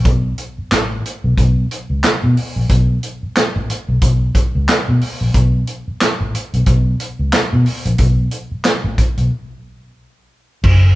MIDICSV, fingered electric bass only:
0, 0, Header, 1, 3, 480
1, 0, Start_track
1, 0, Tempo, 661521
1, 40, Time_signature, 4, 2, 24, 8
1, 7948, End_track
2, 0, Start_track
2, 0, Title_t, "Fingered electric bass"
2, 0, Program_c, 0, 33
2, 39, Note_on_c, 0, 35, 115
2, 235, Note_off_c, 0, 35, 0
2, 519, Note_on_c, 0, 33, 91
2, 715, Note_off_c, 0, 33, 0
2, 901, Note_on_c, 0, 35, 91
2, 980, Note_off_c, 0, 35, 0
2, 997, Note_on_c, 0, 35, 99
2, 1194, Note_off_c, 0, 35, 0
2, 1378, Note_on_c, 0, 37, 77
2, 1458, Note_off_c, 0, 37, 0
2, 1622, Note_on_c, 0, 47, 86
2, 1701, Note_off_c, 0, 47, 0
2, 1858, Note_on_c, 0, 34, 88
2, 1939, Note_off_c, 0, 34, 0
2, 1956, Note_on_c, 0, 35, 106
2, 2153, Note_off_c, 0, 35, 0
2, 2582, Note_on_c, 0, 33, 90
2, 2661, Note_off_c, 0, 33, 0
2, 2819, Note_on_c, 0, 35, 101
2, 2899, Note_off_c, 0, 35, 0
2, 2917, Note_on_c, 0, 35, 97
2, 3114, Note_off_c, 0, 35, 0
2, 3302, Note_on_c, 0, 37, 91
2, 3381, Note_off_c, 0, 37, 0
2, 3543, Note_on_c, 0, 47, 77
2, 3622, Note_off_c, 0, 47, 0
2, 3780, Note_on_c, 0, 34, 82
2, 3860, Note_off_c, 0, 34, 0
2, 3877, Note_on_c, 0, 35, 104
2, 4074, Note_off_c, 0, 35, 0
2, 4501, Note_on_c, 0, 33, 94
2, 4581, Note_off_c, 0, 33, 0
2, 4743, Note_on_c, 0, 35, 89
2, 4822, Note_off_c, 0, 35, 0
2, 4838, Note_on_c, 0, 35, 102
2, 5035, Note_off_c, 0, 35, 0
2, 5219, Note_on_c, 0, 37, 82
2, 5300, Note_off_c, 0, 37, 0
2, 5462, Note_on_c, 0, 47, 94
2, 5542, Note_off_c, 0, 47, 0
2, 5700, Note_on_c, 0, 34, 96
2, 5780, Note_off_c, 0, 34, 0
2, 5796, Note_on_c, 0, 35, 106
2, 5994, Note_off_c, 0, 35, 0
2, 6416, Note_on_c, 0, 33, 100
2, 6498, Note_off_c, 0, 33, 0
2, 6659, Note_on_c, 0, 35, 89
2, 6740, Note_off_c, 0, 35, 0
2, 7718, Note_on_c, 0, 30, 115
2, 7915, Note_off_c, 0, 30, 0
2, 7948, End_track
3, 0, Start_track
3, 0, Title_t, "Muted fingered electric bass strokes"
3, 423, Note_on_c, 9, 29, 50
3, 496, Note_off_c, 9, 29, 0
3, 2343, Note_on_c, 9, 29, 46
3, 2415, Note_off_c, 9, 29, 0
3, 4264, Note_on_c, 9, 29, 48
3, 4337, Note_off_c, 9, 29, 0
3, 6178, Note_on_c, 9, 29, 49
3, 6251, Note_off_c, 9, 29, 0
3, 7948, End_track
0, 0, End_of_file